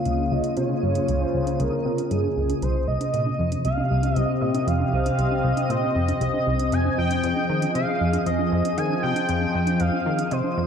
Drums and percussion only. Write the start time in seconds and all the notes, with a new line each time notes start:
0.05 closed hi-hat
0.18 high conga
0.44 closed hi-hat, high conga
0.57 closed hi-hat
0.69 high conga
0.95 closed hi-hat, high conga
1.08 closed hi-hat
1.21 high conga
1.47 closed hi-hat, high conga
1.60 closed hi-hat
1.72 high conga
1.98 closed hi-hat, high conga
2.11 closed hi-hat
2.24 high conga
2.50 closed hi-hat, high conga
2.62 closed hi-hat
2.75 high conga
3.01 closed hi-hat, high conga
3.14 closed hi-hat
3.26 high conga
3.52 closed hi-hat, high conga
3.65 closed hi-hat
3.78 high conga
4.03 closed hi-hat, high conga
4.16 closed hi-hat
4.29 high conga
4.55 closed hi-hat, high conga
4.68 closed hi-hat
4.80 high conga
5.06 closed hi-hat, high conga
5.19 closed hi-hat
5.31 high conga
5.57 closed hi-hat, high conga
5.70 closed hi-hat
5.83 high conga
6.08 closed hi-hat, high conga
6.21 closed hi-hat
6.34 high conga
6.59 closed hi-hat, high conga
6.72 closed hi-hat
6.85 high conga
7.11 closed hi-hat, high conga
7.24 closed hi-hat
7.36 high conga
7.62 closed hi-hat, high conga
7.75 closed hi-hat
7.88 high conga
8.13 closed hi-hat, high conga
8.26 closed hi-hat
8.39 high conga
8.65 closed hi-hat, high conga
8.78 closed hi-hat
8.90 high conga
9.16 closed hi-hat, high conga
9.29 closed hi-hat
9.41 high conga
9.67 closed hi-hat, high conga
9.80 closed hi-hat
9.93 high conga
10.19 closed hi-hat, high conga
10.31 closed hi-hat
10.44 high conga